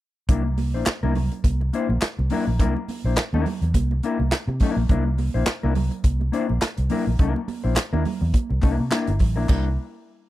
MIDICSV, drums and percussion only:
0, 0, Header, 1, 2, 480
1, 0, Start_track
1, 0, Tempo, 575264
1, 242, Time_signature, 4, 2, 24, 8
1, 8587, End_track
2, 0, Start_track
2, 0, Title_t, "Drums"
2, 240, Note_on_c, 9, 36, 117
2, 240, Note_on_c, 9, 42, 104
2, 246, Note_on_c, 9, 62, 34
2, 246, Note_on_c, 9, 64, 75
2, 323, Note_off_c, 9, 42, 0
2, 324, Note_off_c, 9, 36, 0
2, 329, Note_off_c, 9, 62, 0
2, 329, Note_off_c, 9, 64, 0
2, 480, Note_on_c, 9, 46, 76
2, 482, Note_on_c, 9, 63, 81
2, 563, Note_off_c, 9, 46, 0
2, 565, Note_off_c, 9, 63, 0
2, 717, Note_on_c, 9, 39, 93
2, 721, Note_off_c, 9, 39, 0
2, 721, Note_on_c, 9, 38, 123
2, 721, Note_on_c, 9, 39, 105
2, 722, Note_on_c, 9, 42, 106
2, 728, Note_on_c, 9, 62, 43
2, 804, Note_off_c, 9, 38, 0
2, 804, Note_off_c, 9, 39, 0
2, 806, Note_off_c, 9, 42, 0
2, 812, Note_off_c, 9, 62, 0
2, 863, Note_on_c, 9, 63, 78
2, 946, Note_off_c, 9, 63, 0
2, 961, Note_on_c, 9, 46, 73
2, 966, Note_on_c, 9, 64, 87
2, 1045, Note_off_c, 9, 46, 0
2, 1049, Note_off_c, 9, 64, 0
2, 1098, Note_on_c, 9, 42, 50
2, 1181, Note_off_c, 9, 42, 0
2, 1201, Note_on_c, 9, 36, 91
2, 1203, Note_on_c, 9, 42, 94
2, 1206, Note_on_c, 9, 62, 33
2, 1206, Note_on_c, 9, 63, 82
2, 1285, Note_off_c, 9, 36, 0
2, 1287, Note_off_c, 9, 42, 0
2, 1290, Note_off_c, 9, 62, 0
2, 1290, Note_off_c, 9, 63, 0
2, 1345, Note_on_c, 9, 62, 35
2, 1429, Note_off_c, 9, 62, 0
2, 1447, Note_on_c, 9, 42, 68
2, 1530, Note_off_c, 9, 42, 0
2, 1583, Note_on_c, 9, 63, 69
2, 1667, Note_off_c, 9, 63, 0
2, 1681, Note_on_c, 9, 39, 112
2, 1687, Note_off_c, 9, 39, 0
2, 1687, Note_on_c, 9, 38, 113
2, 1687, Note_on_c, 9, 39, 93
2, 1689, Note_on_c, 9, 42, 98
2, 1696, Note_on_c, 9, 62, 32
2, 1771, Note_off_c, 9, 38, 0
2, 1771, Note_off_c, 9, 39, 0
2, 1773, Note_off_c, 9, 42, 0
2, 1779, Note_off_c, 9, 62, 0
2, 1828, Note_on_c, 9, 62, 42
2, 1912, Note_off_c, 9, 62, 0
2, 1917, Note_on_c, 9, 46, 80
2, 1930, Note_on_c, 9, 64, 77
2, 2000, Note_off_c, 9, 46, 0
2, 2014, Note_off_c, 9, 64, 0
2, 2165, Note_on_c, 9, 36, 112
2, 2165, Note_on_c, 9, 42, 86
2, 2175, Note_on_c, 9, 64, 75
2, 2249, Note_off_c, 9, 36, 0
2, 2249, Note_off_c, 9, 42, 0
2, 2258, Note_off_c, 9, 64, 0
2, 2307, Note_on_c, 9, 62, 39
2, 2390, Note_off_c, 9, 62, 0
2, 2406, Note_on_c, 9, 63, 68
2, 2409, Note_on_c, 9, 46, 80
2, 2489, Note_off_c, 9, 63, 0
2, 2493, Note_off_c, 9, 46, 0
2, 2644, Note_on_c, 9, 39, 87
2, 2646, Note_off_c, 9, 39, 0
2, 2646, Note_on_c, 9, 38, 121
2, 2646, Note_on_c, 9, 39, 100
2, 2648, Note_on_c, 9, 42, 96
2, 2648, Note_on_c, 9, 62, 41
2, 2730, Note_off_c, 9, 38, 0
2, 2730, Note_off_c, 9, 39, 0
2, 2731, Note_off_c, 9, 42, 0
2, 2732, Note_off_c, 9, 62, 0
2, 2784, Note_on_c, 9, 63, 78
2, 2868, Note_off_c, 9, 63, 0
2, 2886, Note_on_c, 9, 64, 84
2, 2887, Note_on_c, 9, 46, 78
2, 2970, Note_off_c, 9, 46, 0
2, 2970, Note_off_c, 9, 64, 0
2, 3020, Note_on_c, 9, 42, 49
2, 3103, Note_off_c, 9, 42, 0
2, 3122, Note_on_c, 9, 36, 92
2, 3123, Note_on_c, 9, 42, 99
2, 3132, Note_on_c, 9, 62, 34
2, 3132, Note_on_c, 9, 63, 80
2, 3206, Note_off_c, 9, 36, 0
2, 3207, Note_off_c, 9, 42, 0
2, 3215, Note_off_c, 9, 62, 0
2, 3215, Note_off_c, 9, 63, 0
2, 3263, Note_on_c, 9, 62, 39
2, 3347, Note_off_c, 9, 62, 0
2, 3364, Note_on_c, 9, 42, 62
2, 3447, Note_off_c, 9, 42, 0
2, 3502, Note_on_c, 9, 63, 65
2, 3586, Note_off_c, 9, 63, 0
2, 3603, Note_on_c, 9, 38, 117
2, 3603, Note_on_c, 9, 39, 93
2, 3605, Note_on_c, 9, 42, 96
2, 3610, Note_off_c, 9, 39, 0
2, 3610, Note_on_c, 9, 39, 123
2, 3616, Note_on_c, 9, 62, 31
2, 3687, Note_off_c, 9, 38, 0
2, 3688, Note_off_c, 9, 42, 0
2, 3693, Note_off_c, 9, 39, 0
2, 3699, Note_off_c, 9, 62, 0
2, 3745, Note_on_c, 9, 62, 42
2, 3828, Note_off_c, 9, 62, 0
2, 3835, Note_on_c, 9, 46, 88
2, 3842, Note_on_c, 9, 36, 94
2, 3851, Note_on_c, 9, 64, 84
2, 3919, Note_off_c, 9, 46, 0
2, 3926, Note_off_c, 9, 36, 0
2, 3935, Note_off_c, 9, 64, 0
2, 4081, Note_on_c, 9, 42, 92
2, 4083, Note_on_c, 9, 36, 108
2, 4091, Note_on_c, 9, 62, 34
2, 4091, Note_on_c, 9, 64, 78
2, 4165, Note_off_c, 9, 42, 0
2, 4166, Note_off_c, 9, 36, 0
2, 4175, Note_off_c, 9, 62, 0
2, 4175, Note_off_c, 9, 64, 0
2, 4324, Note_on_c, 9, 46, 74
2, 4324, Note_on_c, 9, 63, 75
2, 4407, Note_off_c, 9, 46, 0
2, 4408, Note_off_c, 9, 63, 0
2, 4560, Note_on_c, 9, 38, 127
2, 4560, Note_on_c, 9, 39, 105
2, 4561, Note_on_c, 9, 42, 101
2, 4563, Note_off_c, 9, 39, 0
2, 4563, Note_on_c, 9, 39, 96
2, 4643, Note_off_c, 9, 38, 0
2, 4645, Note_off_c, 9, 42, 0
2, 4646, Note_off_c, 9, 39, 0
2, 4702, Note_on_c, 9, 63, 71
2, 4785, Note_off_c, 9, 63, 0
2, 4799, Note_on_c, 9, 46, 80
2, 4806, Note_on_c, 9, 64, 92
2, 4883, Note_off_c, 9, 46, 0
2, 4890, Note_off_c, 9, 64, 0
2, 4935, Note_on_c, 9, 42, 52
2, 5019, Note_off_c, 9, 42, 0
2, 5038, Note_on_c, 9, 42, 93
2, 5040, Note_on_c, 9, 36, 96
2, 5045, Note_on_c, 9, 62, 34
2, 5045, Note_on_c, 9, 63, 80
2, 5122, Note_off_c, 9, 42, 0
2, 5124, Note_off_c, 9, 36, 0
2, 5129, Note_off_c, 9, 62, 0
2, 5129, Note_off_c, 9, 63, 0
2, 5181, Note_on_c, 9, 62, 37
2, 5265, Note_off_c, 9, 62, 0
2, 5284, Note_on_c, 9, 42, 61
2, 5367, Note_off_c, 9, 42, 0
2, 5418, Note_on_c, 9, 63, 65
2, 5501, Note_off_c, 9, 63, 0
2, 5521, Note_on_c, 9, 39, 113
2, 5522, Note_off_c, 9, 39, 0
2, 5522, Note_on_c, 9, 38, 107
2, 5522, Note_on_c, 9, 39, 83
2, 5524, Note_on_c, 9, 42, 94
2, 5530, Note_on_c, 9, 62, 35
2, 5606, Note_off_c, 9, 38, 0
2, 5606, Note_off_c, 9, 39, 0
2, 5607, Note_off_c, 9, 42, 0
2, 5614, Note_off_c, 9, 62, 0
2, 5651, Note_on_c, 9, 42, 61
2, 5735, Note_off_c, 9, 42, 0
2, 5754, Note_on_c, 9, 46, 82
2, 5766, Note_on_c, 9, 64, 85
2, 5837, Note_off_c, 9, 46, 0
2, 5850, Note_off_c, 9, 64, 0
2, 5999, Note_on_c, 9, 42, 95
2, 6001, Note_on_c, 9, 36, 120
2, 6008, Note_on_c, 9, 64, 76
2, 6082, Note_off_c, 9, 42, 0
2, 6084, Note_off_c, 9, 36, 0
2, 6091, Note_off_c, 9, 64, 0
2, 6143, Note_on_c, 9, 62, 39
2, 6226, Note_off_c, 9, 62, 0
2, 6241, Note_on_c, 9, 63, 78
2, 6243, Note_on_c, 9, 46, 75
2, 6325, Note_off_c, 9, 63, 0
2, 6327, Note_off_c, 9, 46, 0
2, 6474, Note_on_c, 9, 39, 88
2, 6480, Note_off_c, 9, 39, 0
2, 6480, Note_on_c, 9, 38, 122
2, 6480, Note_on_c, 9, 39, 113
2, 6481, Note_on_c, 9, 42, 109
2, 6484, Note_on_c, 9, 62, 40
2, 6563, Note_off_c, 9, 38, 0
2, 6563, Note_off_c, 9, 39, 0
2, 6565, Note_off_c, 9, 42, 0
2, 6568, Note_off_c, 9, 62, 0
2, 6621, Note_on_c, 9, 62, 35
2, 6621, Note_on_c, 9, 63, 78
2, 6705, Note_off_c, 9, 62, 0
2, 6705, Note_off_c, 9, 63, 0
2, 6718, Note_on_c, 9, 46, 73
2, 6723, Note_on_c, 9, 64, 82
2, 6802, Note_off_c, 9, 46, 0
2, 6807, Note_off_c, 9, 64, 0
2, 6957, Note_on_c, 9, 42, 87
2, 6958, Note_on_c, 9, 36, 102
2, 6962, Note_on_c, 9, 62, 38
2, 6962, Note_on_c, 9, 63, 75
2, 7041, Note_off_c, 9, 36, 0
2, 7041, Note_off_c, 9, 42, 0
2, 7045, Note_off_c, 9, 62, 0
2, 7045, Note_off_c, 9, 63, 0
2, 7096, Note_on_c, 9, 62, 33
2, 7179, Note_off_c, 9, 62, 0
2, 7196, Note_on_c, 9, 39, 74
2, 7199, Note_on_c, 9, 46, 62
2, 7202, Note_on_c, 9, 36, 104
2, 7205, Note_on_c, 9, 63, 59
2, 7279, Note_off_c, 9, 39, 0
2, 7283, Note_off_c, 9, 46, 0
2, 7285, Note_off_c, 9, 36, 0
2, 7288, Note_off_c, 9, 63, 0
2, 7339, Note_on_c, 9, 63, 66
2, 7422, Note_off_c, 9, 63, 0
2, 7437, Note_on_c, 9, 39, 119
2, 7441, Note_off_c, 9, 39, 0
2, 7441, Note_on_c, 9, 38, 114
2, 7441, Note_on_c, 9, 39, 84
2, 7443, Note_on_c, 9, 42, 91
2, 7451, Note_on_c, 9, 62, 30
2, 7525, Note_off_c, 9, 38, 0
2, 7525, Note_off_c, 9, 39, 0
2, 7527, Note_off_c, 9, 42, 0
2, 7534, Note_off_c, 9, 62, 0
2, 7570, Note_on_c, 9, 42, 62
2, 7581, Note_on_c, 9, 62, 37
2, 7653, Note_off_c, 9, 42, 0
2, 7665, Note_off_c, 9, 62, 0
2, 7670, Note_on_c, 9, 46, 82
2, 7678, Note_on_c, 9, 36, 92
2, 7683, Note_on_c, 9, 64, 80
2, 7753, Note_off_c, 9, 46, 0
2, 7761, Note_off_c, 9, 36, 0
2, 7766, Note_off_c, 9, 64, 0
2, 7918, Note_on_c, 9, 39, 80
2, 7919, Note_on_c, 9, 36, 110
2, 7919, Note_on_c, 9, 49, 92
2, 7923, Note_on_c, 9, 63, 76
2, 8002, Note_off_c, 9, 36, 0
2, 8002, Note_off_c, 9, 39, 0
2, 8003, Note_off_c, 9, 49, 0
2, 8007, Note_off_c, 9, 63, 0
2, 8587, End_track
0, 0, End_of_file